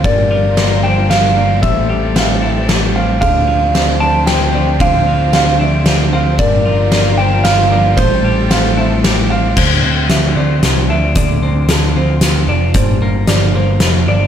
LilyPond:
<<
  \new Staff \with { instrumentName = "Clean electric guitar" } { \time 3/4 \key d \minor \tempo 4 = 113 d''4. g''8 f''4 | e''4. r4. | f''4. a''8 g''4 | f''4. r4. |
d''4. g''8 f''4 | c''2 r4 | r2. | r2. |
r2. | }
  \new Staff \with { instrumentName = "Felt piano" } { \time 3/4 \key d \minor bes'4 d''8 c''4 d''8 | c''4 f''8 e''4 f''8 | a'4 d''8 c''4 d''8 | c''4 f''8 e''4 f''8 |
bes'4 d''8 c''4 d''8 | c''4 f''8 e''4 f''8 | c''4 e''8 d''4 e''8 | d''4 a'8 c''4 d''8 |
c''4 d''8 c''4 d''8 | }
  \new Staff \with { instrumentName = "String section" } { \time 3/4 \key d \minor << { <f' bes'>2. | <c' a'>2. | <d' c''>2.~ | <d' c''>2. |
<f' bes'>2. | <c' a'>2. | r2. | r2. |
r2. | } \\ { g2.~ | g2. | f2.~ | f2. |
g2.~ | g2. | r2. | r2. |
r2. | } >> }
  \new Staff \with { instrumentName = "Clean electric guitar" } { \clef bass \time 3/4 \key d \minor g,8 f8 bes8 d'8 f8 bes8 | a,8 g8 c'8 e'8 g8 c'8 | d8 f8 c'8 d'8 f8 c'8 | d8 f8 c'8 d'8 f8 c'8 |
g,8 f8 bes8 d'8 f8 bes8 | a,8 g8 c'8 e'8 g8 c'8 | d8 c'8 f8 c'8 f8 d'8 | d8 c'8 f8 c'8 f8 d'8 |
g,8 bes8 f8 bes8 f8 d'8 | }
  \new Staff \with { instrumentName = "Picked electric bass" } { \clef bass \time 3/4 \key d \minor g,,2. | a,,2. | d,2. | d,2. |
g,,2. | a,,2. | d,8 d,8 d,8 d,8 c,8 d,8 | d,8 d,8 d,8 d,8 d,8 f,,8 |
g,,8 g,,8 g,,8 g,,8 f,,8 g,,8 | }
  \new DrumStaff \with { instrumentName = "Drums" } \drummode { \time 3/4 <bd cymr>4 <cymr sn>4 <cymr sn>4 | <bd cymr>4 <cymr sn>4 <cymr sn>4 | <bd cymr>4 <cymr sn>4 <cymr sn>4 | <bd cymr>4 <cymr sn>4 <cymr sn>4 |
<bd cymr>4 <cymr sn>4 <cymr sn>4 | <bd cymr>4 <cymr sn>4 <cymr sn>4 | <cymc bd>4 <hh sn>4 <hh sn>4 | <hh bd>4 <hh sn>4 <hh sn>4 |
<hh bd>4 <hh sn>4 <hh sn>4 | }
>>